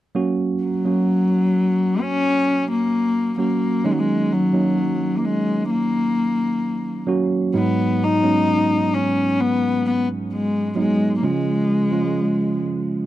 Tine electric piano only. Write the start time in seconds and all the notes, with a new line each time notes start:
0.15 F#3 A#3 C#4 F#4
0.85 F#3 A#3 C#4 F#4
3.38 F#3 A#3 C#4 F#4
3.84 D#3 F#3 A#3 C#4 D#4
4.53 F#3 A#3 C#4 D#4
7.07 F#3 A#3 C#4 F#4
7.54 G#2 F#3 G#3 B3 D#4
8.22 F#3 G#3 B3 C#4
10.75 F#3 G#3 B3 D#4
11.22 C#3 F3 G#3 C#4 F4
11.92 F3 G#3 C#4 F4